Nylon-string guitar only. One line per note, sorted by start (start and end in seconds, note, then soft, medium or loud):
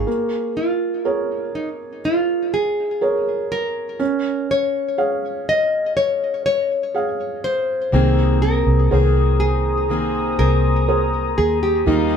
0.00 0.59 G#4 medium
0.57 1.55 F4 medium
1.55 1.68 D#4 medium
2.05 2.55 F4 medium
2.54 3.51 G#4 medium
3.52 4.51 A#4 medium
4.51 5.49 C#5 medium
5.49 5.96 D#5 medium
5.97 6.45 C#5 medium
6.46 7.44 C#5 medium
7.44 8.42 C5 medium
8.42 9.14 A#4 medium
9.14 9.40 G#4 medium
9.40 10.39 G#4 medium
10.39 11.37 A#4 medium
11.38 11.62 G#4 medium
11.63 12.17 G4 medium